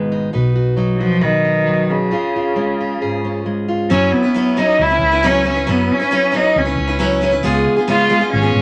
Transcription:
Already playing: G#1 G#2 B2 D#3 G#3 B3 D#4 B4
0.12 D#4
0.33 B1 B2 D#4 F#4 B4
0.56 F#4
0.77 F#3 D#4
0.95 F#3
1.00 F3 F#4
1.21 B2 D#3 B4
1.45 D#4
1.67 F#3
1.90 C#3 F#4
2.11 C#3 C#4 F4 G#4
2.36 F4
2.56 G#3 C#4
2.80 F4
3.01 G#2 G#4
3.25 C#4
3.46 G#3
3.68 F4
3.90 F#1 F#3 C#4 E4 B4
4.12 B3
4.23 C#4 E4 B4
4.34 F#3 C#4 E4 B4
4.57 F#3 C#4 D#4 E4 B4
4.79 C#2 E4
4.89 C#4 E4 B4
5.01 C#2
5.11 C#4 E4 B4
5.23 F#3 C#4 E4 B4
5.44 F#3 C#4 E4 B4
5.49 C#4
5.55 C#4 E4 B4
5.67 F#1 F#3 C#4 E4 B4
5.71 B3
5.92 C#4
6.00 C#4 E4 B4
6.11 F#3 C#4 E4 B4
6.32 F#3 C#4 E4 B4
6.36 D#4
6.56 C#2 C#4
6.65 C#4 E4 B4
6.78 C#2
6.88 C#4 E4 B4
6.99 F#3 C#4 E4 B4
7.21 F#3 C#4 E4 B4
7.31 C#4 E4 B4
7.43 C#2 C#3 G#3 B3 F4 G#4
7.76 B3 F4 G#4
7.87 C#3 G#3 B3 F4 G#4
8.09 G#3 B3 F4 G#4
8.20 B3 F4 G#4
8.33 G#1 C#4
8.42 B3 F4 G#4
8.54 G#1

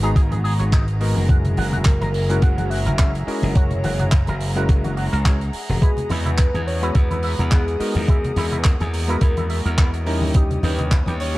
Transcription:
Already playing: G#1 B3 G#4 F#5 A#5
0.02 G#3 B3 D#4 F#4 G#4 A#5, closed hi-hat
0.16 G#1 G#4, kick, closed hi-hat
0.32 G#4, closed hi-hat, high conga
0.44 G#4, open hi-hat
0.60 G#1 C#5, closed hi-hat
0.72 D#4, kick, clap, closed hi-hat, high conga
0.88 closed hi-hat
1.01 G#3 B3 D#4 F#4 A#4, open hi-hat
1.16 F#1, open hi-hat, high conga
1.28 G#3 C#4 E4 F#4 A#4 E5 F#5, kick, closed hi-hat
1.45 closed hi-hat, low conga
1.57 F#1 F#4, open hi-hat, high conga
1.73 F#4, closed hi-hat, low conga
1.85 A#4, kick, clap, closed hi-hat
2.01 F#1 A#4, closed hi-hat, high conga
2.14 open hi-hat
2.29 G#3 C#4 E4 F#4 A#4, closed hi-hat
2.42 F#1 F#4 F#5, kick, closed hi-hat
2.58 F#4, closed hi-hat, high conga
2.70 F#4 E5, open hi-hat
2.86 F#1 A#4, closed hi-hat, low conga
2.99 C#4, kick, clap, closed hi-hat, high conga
3.15 closed hi-hat
3.27 G#3 C#4 E4 F#4 A#4 D#5, muted slap bass stroke, open hi-hat
3.42 F#1, high conga
3.55 G#3 C#4 E4 F#4 A#4 C#5, kick, closed hi-hat
3.71 closed hi-hat, low conga
3.84 F#1 F#4, open hi-hat, high conga
3.99 F#4, closed hi-hat, low conga
4.12 kick, clap, closed hi-hat
4.27 F#1 A#4, closed hi-hat, high conga
4.40 open hi-hat
4.55 G#3 C#4 E4 F#4 A#4, closed hi-hat
4.69 F#1 F#4, kick, closed hi-hat
4.84 F#4, closed hi-hat, high conga
4.97 F#4, open hi-hat
5.13 C#2 A#4, closed hi-hat
5.25 G#3 C#4 E4 F#4 C#5, kick, clap, closed hi-hat, high conga
5.41 closed hi-hat
5.53 open hi-hat
5.69 E1, open hi-hat, high conga
5.81 G#3 B3 E4 F#4 G#4 B4 D#5 D#6, kick, closed hi-hat
5.97 closed hi-hat, low conga
6.10 E2 E4 B4, open hi-hat, high conga
6.26 E4, closed hi-hat, low conga
6.38 kick, clap, closed hi-hat
6.54 E2 G#4, closed hi-hat, high conga
6.67 C#5, open hi-hat
6.81 G#3 B3 E4 F#4 B4, closed hi-hat
6.95 E2 E4 B4, kick, closed hi-hat
7.11 E4, closed hi-hat, high conga
7.23 E5, open hi-hat
7.38 E2 A#4, closed hi-hat, low conga
7.51 B3 G#4, kick, clap, closed hi-hat, high conga
7.68 closed hi-hat
7.80 G#3 B3 D#4 F#4 A#4, muted slap bass stroke, open hi-hat
7.95 E2, high conga
8.07 G#3 B3 E4 F#4 G#4 A#4 D#5, kick, closed hi-hat
8.24 closed hi-hat, low conga
8.36 E2 E4, open hi-hat, high conga
8.51 E4, closed hi-hat, low conga
8.59 B4
8.64 A#4, kick, clap, closed hi-hat
8.80 E2 G#4, closed hi-hat, high conga
8.94 open hi-hat
9.08 G#3 B3 E4 F#4 A#4, closed hi-hat
9.21 E2 E4, kick, closed hi-hat
9.37 E4, closed hi-hat, high conga
9.50 E5, open hi-hat
9.65 E2 A#4, closed hi-hat
9.78 B3, kick, clap, closed hi-hat, high conga
9.94 closed hi-hat
10.06 G3 C#4 D#4 E4 A#4 C#5 G5 D#6, open hi-hat
10.21 D#2, open hi-hat, high conga
10.34 E3 G3 C#4 D#4 G4, kick, closed hi-hat
10.51 closed hi-hat, low conga
10.63 D#2 D#4 B4, open hi-hat, high conga
10.79 D#4, closed hi-hat, low conga
10.91 kick, clap, closed hi-hat
11.06 D#2 G4, closed hi-hat, high conga
11.20 C#5, open hi-hat
11.35 G3 C#4

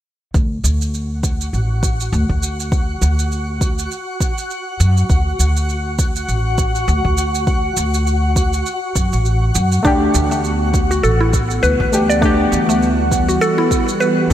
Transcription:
0.34 D2 F#4 F#5, kick, shaker
0.64 D2, shaker
0.82 shaker
0.94 shaker
1.23 kick, shaker
1.41 shaker
1.53 A1, shaker
1.83 kick, shaker
2.00 shaker
2.12 D2, shaker
2.29 D2, kick
2.43 shaker
2.60 shaker
2.72 kick, shaker
3.02 D2, shaker
3.19 shaker
3.32 shaker
3.61 kick, shaker
3.79 shaker
3.91 shaker
4.20 kick, shaker
4.38 shaker
4.51 shaker
4.80 F#2, shaker
4.97 shaker
5.10 D2, kick, shaker
5.39 D2, shaker
5.57 shaker
5.69 shaker
5.99 kick, shaker
6.16 shaker
6.28 A1, shaker
6.58 kick, shaker
6.75 shaker
6.88 D2, shaker
7.05 D2, kick
7.18 shaker
7.35 shaker
7.47 kick, shaker
7.77 D2, shaker
7.94 shaker
8.07 shaker
8.36 kick, shaker
8.53 shaker
8.66 shaker
8.96 F#2, kick, shaker
9.13 A1, shaker
9.25 shaker
9.55 F#2, shaker
9.72 shaker
9.83 D2 E3 A3 D4, kick, shaker
9.87 G4
10.14 D2, shaker
10.21 B3
10.31 A3, shaker
10.44 shaker
10.74 kick, shaker
10.91 F#4, shaker
11.03 A1 A4 F#5, shaker
11.21 E4
11.33 kick, shaker
11.51 shaker
11.63 D2 B4, shaker
11.80 D2 G3, kick
11.92 A3 D4 G4, shaker
12.09 D5, shaker
12.21 A3 D4, kick, shaker
12.25 G4
12.52 D2, shaker
12.69 A3, shaker
12.83 shaker
13.12 kick, shaker
13.29 F#4, shaker
13.41 A4, shaker
13.58 E4
13.71 kick, shaker
13.89 shaker
14.00 B4, shaker
14.30 A3

